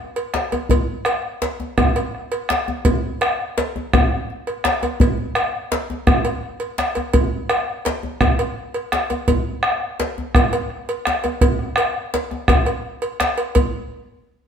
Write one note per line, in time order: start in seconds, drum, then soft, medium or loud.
0.16 cowbell medium
0.34 bombo rim medium
0.34 djembe slap medium
0.52 cowbell medium
0.52 djembe tone medium
0.69 bombo low medium
0.69 cowbell medium
0.69 djembe bass medium
1.05 bombo rim medium
1.05 cowbell medium
1.05 djembe slap soft
1.42 bombo rim soft
1.42 cowbell medium
1.42 djembe slap medium
1.60 djembe tone medium
1.78 bombo rim loud
1.78 bombo low loud
1.78 cowbell medium
1.78 djembe bass medium
1.96 cowbell medium
2.15 bombo rim soft
2.32 cowbell medium
2.49 bombo rim loud
2.49 djembe slap medium
2.68 djembe tone medium
2.85 bombo rim soft
2.85 bombo low loud
2.85 cowbell medium
2.85 djembe bass medium
3.21 bombo rim loud
3.21 cowbell medium
3.58 cowbell medium
3.58 djembe slap medium
3.76 djembe tone medium
3.93 bombo rim loud
3.93 bombo low loud
3.93 cowbell medium
3.93 djembe bass medium
4.12 bombo rim soft
4.30 djembe slap soft
4.47 cowbell soft
4.47 djembe slap soft
4.64 bombo rim loud
4.64 djembe slap loud
4.83 cowbell medium
4.83 djembe tone medium
5.00 bombo low loud
5.00 cowbell medium
5.00 djembe bass medium
5.35 bombo rim loud
5.35 cowbell medium
5.35 djembe slap soft
5.72 bombo rim soft
5.72 cowbell medium
5.72 djembe slap medium
5.90 djembe tone medium
6.07 bombo rim loud
6.07 bombo low loud
6.07 cowbell medium
6.07 djembe bass medium
6.25 cowbell medium
6.43 bombo rim soft
6.60 cowbell soft
6.78 bombo rim medium
6.78 djembe slap medium
6.95 cowbell medium
6.95 djembe tone medium
7.13 bombo low loud
7.13 cowbell medium
7.13 djembe bass medium
7.49 bombo rim loud
7.49 cowbell medium
7.49 djembe slap soft
7.85 cowbell medium
7.85 djembe slap medium
8.03 djembe tone medium
8.21 bombo rim loud
8.21 bombo low loud
8.21 cowbell medium
8.21 djembe bass medium
8.39 cowbell medium
8.56 bombo rim soft
8.74 cowbell medium
8.92 bombo rim loud
8.92 djembe slap medium
9.10 cowbell soft
9.10 djembe tone medium
9.28 bombo low loud
9.28 cowbell medium
9.28 djembe bass medium
9.63 bombo rim loud
9.63 djembe slap soft
10.00 bombo rim soft
10.00 cowbell medium
10.00 djembe slap medium
10.18 djembe tone medium
10.35 bombo rim loud
10.35 bombo low loud
10.35 cowbell medium
10.35 djembe bass medium
10.53 cowbell medium
10.70 bombo rim soft
10.89 cowbell medium
11.05 bombo rim loud
11.05 djembe slap medium
11.24 cowbell medium
11.24 djembe tone medium
11.41 bombo rim soft
11.41 bombo low loud
11.41 cowbell medium
11.41 djembe bass medium
11.59 bombo rim soft
11.76 bombo rim loud
11.76 cowbell medium
11.94 bombo rim soft
12.14 cowbell medium
12.14 djembe slap medium
12.31 bombo rim soft
12.31 djembe tone medium
12.48 bombo rim loud
12.48 bombo low loud
12.48 cowbell medium
12.48 djembe slap soft
12.48 djembe bass medium
12.66 cowbell medium
12.66 djembe slap soft
13.02 cowbell medium
13.20 bombo rim loud
13.20 djembe slap medium
13.38 cowbell medium
13.55 bombo low medium
13.55 cowbell medium
13.55 djembe bass medium